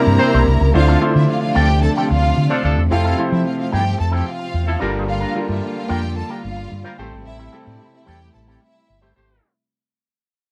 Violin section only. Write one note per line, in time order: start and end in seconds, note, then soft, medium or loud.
0.00 0.72 A#4 medium
0.00 0.72 A#5 loud
0.75 0.96 F4 loud
0.75 0.96 F5 loud
1.16 1.26 E4 medium
1.16 1.26 E5 medium
1.29 1.39 F4 medium
1.29 1.40 F5 medium
1.41 1.52 F4 medium
1.41 1.52 F5 medium
1.55 1.77 G4 loud
1.55 1.77 G5 loud
1.82 1.93 A4 medium
1.82 1.93 A5 medium
1.95 2.06 G4 medium
1.95 2.06 G5 medium
2.10 2.61 F4 loud
2.10 2.61 F5 loud
2.91 3.13 F4 loud
2.91 3.13 F5 loud
3.32 3.43 E4 medium
3.32 3.43 E5 medium
3.47 3.57 F4 medium
3.47 3.57 F5 medium
3.60 3.71 F4 medium
3.60 3.70 F5 medium
3.73 3.94 G4 loud
3.73 3.94 G5 loud
4.00 4.11 A4 medium
4.00 4.11 A5 loud
4.14 4.25 G4 medium
4.14 4.25 G5 medium
4.28 4.79 F4 loud
4.28 4.79 F5 loud
5.09 5.31 F4 loud
5.09 5.30 F5 loud
5.51 5.61 E4 medium
5.51 5.61 E5 medium
5.64 5.75 F4 medium
5.64 5.75 F5 loud
5.77 5.88 F4 medium
5.77 5.88 F5 medium
5.90 6.12 G4 loud
5.90 6.12 G5 loud
6.17 6.28 A4 medium
6.17 6.28 A5 loud
6.31 6.42 G4 medium
6.31 6.42 G5 medium
6.44 6.95 F4 loud
6.44 6.95 F5 loud
7.26 7.48 E4 loud
7.26 7.48 E5 loud
7.67 7.78 D4 medium
7.67 7.78 D5 medium
7.80 7.91 E4 medium
7.80 7.91 E5 medium
7.94 8.05 E4 medium
7.94 8.05 E5 medium
8.06 8.29 G4 loud
8.06 8.28 G5 loud
8.34 8.45 A4 medium
8.34 8.45 A5 medium
8.48 8.59 G4 medium
8.48 8.60 G5 loud
8.63 9.14 E4 medium
8.63 9.14 E5 loud